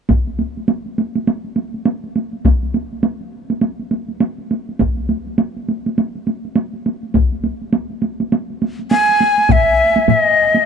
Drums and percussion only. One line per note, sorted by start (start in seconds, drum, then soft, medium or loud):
0.09 taiko medium
0.09 taiko high medium
0.27 taiko high soft
0.39 taiko high soft
0.57 taiko high soft
0.68 taiko high medium
0.86 taiko high soft
0.98 taiko high soft
1.15 taiko high soft
1.27 taiko high medium
1.44 taiko high soft
1.56 taiko high soft
1.74 taiko high soft
1.85 taiko high medium
2.04 taiko high soft
2.16 taiko high soft
2.33 taiko high soft
2.45 taiko medium
2.45 taiko high medium
2.63 taiko high soft
2.74 taiko high soft
2.93 taiko high soft
3.03 taiko high medium
3.21 taiko high soft
3.50 taiko high soft
3.61 taiko high soft
3.79 taiko high soft
3.91 taiko high soft
4.08 taiko high soft
4.20 taiko high medium
4.38 taiko high soft
4.51 taiko high soft
4.69 taiko high soft
4.79 taiko medium
4.79 taiko high medium
4.97 taiko high soft
5.09 taiko high soft
5.27 taiko high soft
5.38 taiko high medium
5.56 taiko high soft
5.68 taiko high soft
5.86 taiko high soft
5.98 taiko high soft
6.15 taiko high soft
6.27 taiko high soft
6.45 taiko high soft
6.56 taiko high medium
6.73 taiko high soft
6.86 taiko high soft
7.03 taiko high soft
7.14 taiko medium
7.14 taiko high soft
7.32 taiko high soft
7.44 taiko high soft
7.62 taiko high soft
7.73 taiko high medium
7.90 taiko high soft
8.02 taiko high soft
8.20 taiko high soft
8.32 taiko high medium
8.50 taiko high soft
8.62 taiko high soft
8.79 taiko high soft
8.91 taiko high medium
9.09 taiko high soft
9.21 taiko high soft
9.38 taiko high soft
9.49 taiko medium
9.49 taiko low-mid medium
9.49 taiko high medium
9.96 taiko high soft
10.08 taiko low-mid medium
10.08 taiko high medium
10.54 taiko high soft